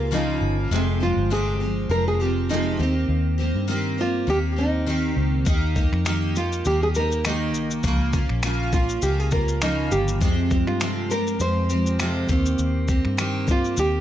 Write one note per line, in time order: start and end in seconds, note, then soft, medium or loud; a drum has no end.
0.00 0.37 C#2 medium
0.00 0.11 A#3 soft
0.00 0.11 C#4 soft
0.00 0.12 F4 soft
0.00 0.13 A#4 medium
0.11 0.71 C#3 medium
0.11 0.72 F3 medium
0.11 0.72 A#3 medium
0.11 0.72 C#4 medium
0.11 0.56 D#4 medium
0.11 0.72 F4 medium
0.41 0.69 G1 medium
0.71 1.14 F1 loud
0.71 1.01 F2 medium
0.71 1.01 C3 medium
0.71 1.01 F3 medium
0.71 1.00 G#3 medium
0.71 1.00 C4 medium
0.71 0.99 G4 medium
1.00 1.30 F3 soft
1.00 1.30 G#3 soft
1.00 1.30 C4 soft
1.00 1.33 F4 medium
1.00 1.30 G4 soft
1.17 1.86 G1 medium
1.30 1.60 F2 medium
1.30 1.61 C3 medium
1.30 1.61 F3 medium
1.30 1.61 G#3 medium
1.30 1.60 C4 medium
1.30 1.59 G4 medium
1.30 1.91 G#4 medium
1.60 1.88 F3 soft
1.60 1.89 G#3 soft
1.60 1.89 C4 soft
1.60 1.90 G4 soft
1.89 2.75 F1 medium
1.89 2.20 F3 medium
1.89 2.20 G#3 medium
1.89 2.20 C4 medium
1.89 2.19 G4 medium
1.89 2.06 A#4 medium
2.08 2.21 G#4 medium
2.20 2.49 F3 soft
2.20 2.49 G#3 soft
2.20 2.50 C4 soft
2.20 2.50 G4 medium
2.20 2.51 G4 medium
2.49 2.79 F2 medium
2.49 2.79 C3 medium
2.49 2.80 F3 medium
2.49 2.80 G#3 medium
2.49 2.79 C4 medium
2.49 2.93 D#4 medium
2.49 2.78 G4 medium
2.79 3.07 D#2 medium
2.79 3.67 D#3 soft
2.79 3.40 A#3 medium
2.79 3.38 C4 medium
2.79 3.37 G4 medium
3.09 3.51 D#2 medium
3.38 3.67 A#3 soft
3.38 3.68 C4 soft
3.38 3.68 G4 medium
3.55 4.24 G2 medium
3.68 3.98 D#3 medium
3.68 3.98 A#3 medium
3.68 3.98 C4 medium
3.68 3.97 G4 medium
3.98 4.27 A#3 soft
3.98 4.27 C4 soft
3.98 4.30 F4 medium
3.98 4.28 G4 soft
4.27 5.13 D#2 medium
4.27 4.57 D#3 medium
4.27 4.57 A#3 medium
4.27 4.56 C4 medium
4.27 4.55 G4 medium
4.27 4.37 G4 medium
4.56 4.85 A#3 soft
4.56 4.86 C4 soft
4.56 5.13 D#4 medium
4.56 4.86 G4 soft
4.86 5.45 D#3 medium
4.86 5.46 A#3 medium
4.86 5.46 C4 medium
4.86 5.46 G4 medium
5.17 5.44 C#2 medium
5.45 5.89 D#2 medium
5.45 5.75 D#3 medium
5.45 5.76 A#3 medium
5.45 5.75 D#4 medium
5.45 5.74 G4 medium
5.45 kick loud
5.45 shaker medium
5.75 6.04 A#3 soft
5.75 6.05 D#4 soft
5.75 6.06 G4 soft
5.75 kick medium
5.75 shaker soft
5.92 6.62 F2 medium
5.92 finger snap soft
6.05 6.35 D#3 medium
6.05 6.35 A#3 medium
6.05 6.35 D#4 medium
6.05 6.34 G4 medium
6.05 finger snap loud
6.05 shaker medium
6.35 6.65 A#3 soft
6.35 6.66 D#4 soft
6.35 6.67 F4 medium
6.35 6.65 G4 soft
6.35 shaker soft
6.52 shaker soft
6.65 7.54 D#2 medium
6.65 6.95 D#3 soft
6.65 6.96 A#3 medium
6.65 6.95 D#4 medium
6.65 6.81 G4 medium
6.65 6.94 G4 medium
6.65 shaker medium
6.83 6.88 G#4 medium
6.95 7.25 A#3 soft
6.95 7.25 D#4 soft
6.95 7.25 G4 soft
6.95 7.26 A#4 medium
6.95 shaker soft
7.12 shaker soft
7.25 7.84 D#3 medium
7.25 7.84 A#3 medium
7.25 7.68 D#4 medium
7.25 7.84 D#4 medium
7.25 7.85 G4 medium
7.25 finger snap loud
7.25 shaker medium
7.54 7.82 C2 medium
7.54 shaker soft
7.71 shaker medium
7.83 8.26 C#2 medium
7.83 8.14 C#3 medium
7.83 8.14 F3 medium
7.83 8.14 A#3 medium
7.83 8.13 C#4 medium
7.83 8.12 F4 medium
7.83 kick loud
7.83 shaker medium
8.13 8.42 A#3 soft
8.13 8.42 C#4 soft
8.13 8.43 F4 medium
8.13 kick medium
8.13 shaker soft
8.29 8.99 A#1 medium
8.29 finger snap soft
8.43 8.73 C#3 medium
8.43 8.73 F3 medium
8.43 8.73 A#3 medium
8.43 8.72 C#4 medium
8.43 8.71 F4 medium
8.43 finger snap medium
8.43 shaker medium
8.72 9.01 A#3 soft
8.72 9.02 C#4 soft
8.72 9.02 F4 soft
8.72 9.04 F4 medium
8.72 kick medium
8.72 shaker soft
8.89 shaker soft
9.02 9.88 C#2 medium
9.02 9.32 F3 medium
9.02 9.32 A#3 medium
9.02 9.31 C#4 medium
9.02 9.30 F4 medium
9.02 9.20 G4 medium
9.02 shaker medium
9.20 9.32 G#4 medium
9.31 9.62 A#3 soft
9.31 9.62 C#4 soft
9.31 9.62 F4 soft
9.31 9.60 A#4 medium
9.31 kick medium
9.31 shaker soft
9.48 shaker soft
9.61 10.21 C#3 medium
9.61 10.21 F3 medium
9.61 10.21 A#3 medium
9.61 10.22 C#4 medium
9.61 9.93 D#4 medium
9.61 10.22 F4 medium
9.61 finger snap loud
9.61 shaker medium
9.91 10.19 G1 medium
9.91 10.64 G4 medium
9.91 shaker soft
10.08 shaker soft
10.20 10.51 F2 medium
10.20 10.64 F2 loud
10.20 10.51 C3 medium
10.20 10.51 F3 medium
10.20 10.51 G#3 medium
10.20 10.50 C4 medium
10.20 10.49 G4 medium
10.20 kick loud
10.20 shaker medium
10.50 10.79 F3 soft
10.50 10.79 G#3 soft
10.50 10.80 C4 soft
10.50 10.80 G4 soft
10.50 kick medium
10.50 shaker soft
10.67 11.36 G2 medium
10.67 11.12 F4 medium
10.67 finger snap soft
10.80 11.10 F2 medium
10.80 11.10 C3 medium
10.80 11.11 F3 medium
10.80 11.10 G#3 medium
10.80 11.09 C4 medium
10.80 11.08 G4 medium
10.80 finger snap loud
10.80 shaker medium
11.10 11.38 F3 soft
11.10 11.39 G#3 soft
11.10 11.40 C4 soft
11.10 11.40 G4 soft
11.10 11.41 A#4 medium
11.10 shaker soft
11.27 shaker soft
11.40 12.25 F2 medium
11.40 11.70 F3 soft
11.40 11.70 G#3 soft
11.40 11.69 C4 medium
11.40 11.68 G4 medium
11.40 12.26 C5 medium
11.40 shaker medium
11.70 11.98 F3 soft
11.70 11.99 G#3 soft
11.70 11.99 C4 soft
11.70 11.99 G4 soft
11.70 shaker soft
11.86 shaker soft
11.99 12.29 F2 medium
11.99 12.29 C3 medium
11.99 12.29 F3 medium
11.99 12.30 G#3 medium
11.99 12.28 C4 medium
11.99 12.28 G4 medium
11.99 finger snap medium
11.99 shaker medium
12.29 12.57 D#2 medium
12.29 12.89 D#3 medium
12.29 12.89 A#3 medium
12.29 12.88 C4 medium
12.29 12.86 G4 medium
12.29 kick medium
12.29 shaker soft
12.46 shaker medium
12.59 13.01 D#2 medium
12.59 shaker medium
12.88 13.17 A#3 soft
12.88 13.18 C4 soft
12.88 13.18 G4 medium
12.88 kick medium
12.88 shaker soft
13.05 13.74 G2 medium
13.05 finger snap soft
13.17 13.48 D#3 medium
13.17 13.48 A#3 medium
13.17 13.47 C4 medium
13.17 13.46 G4 medium
13.17 finger snap medium
13.17 shaker medium
13.47 13.76 A#3 soft
13.47 13.77 C4 soft
13.47 13.77 G4 medium
13.47 kick medium
13.47 shaker soft
13.51 13.80 F4 medium
13.64 shaker soft
13.76 14.01 D#2 medium
13.76 14.01 D#3 medium
13.76 14.01 A#3 medium
13.76 14.01 C4 medium
13.76 14.01 G4 medium
13.76 shaker medium